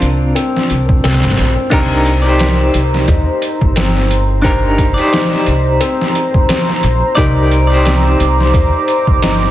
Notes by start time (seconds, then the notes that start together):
Already playing: C4 D4 F4 A#4 C5
0.02 C2, closed hi-hat
0.35 C4, closed hi-hat
0.56 snare
0.70 C2, closed hi-hat
0.89 kick
1.04 C2 C4, snare, closed hi-hat
1.13 snare, closed hi-hat
1.23 G1, snare, closed hi-hat
1.30 snare, closed hi-hat
1.37 A#1, closed hi-hat
1.70 C2 C4 D4 D#4 G4 A#4 C5 A#5, kick, closed hi-hat, crash
2.05 closed hi-hat
2.22 D#4 D5
2.27 G4 C5
2.39 C5, snare, closed hi-hat
2.74 C2, closed hi-hat
2.94 snare
3.08 D#2 D#4, kick, closed hi-hat
3.42 closed hi-hat
3.61 G1, kick
3.76 C4, snare, closed hi-hat
3.97 snare
4.11 closed hi-hat
4.42 D4 D#4 G4 A#4 C5, kick, closed hi-hat
4.78 kick, closed hi-hat
4.94 D#4 D5, closed hi-hat
4.99 G4 C5
5.12 D#4, snare, closed hi-hat
5.33 snare
5.46 C2, closed hi-hat
5.80 C4, closed hi-hat
6.01 snare
6.15 closed hi-hat
6.34 kick
6.49 C5, snare, closed hi-hat
6.69 snare
6.83 A#1, closed hi-hat
7.15 C2 D#4 G4 A#4 D5 D6, kick, closed hi-hat
7.51 closed hi-hat
7.67 D#4 D5
7.72 G4 C5
7.85 C4, snare, closed hi-hat
8.20 C2, closed hi-hat
8.40 snare
8.54 D#2 C5, kick, closed hi-hat
8.88 closed hi-hat
9.07 G1, kick
9.22 D#4, snare, closed hi-hat
9.43 snare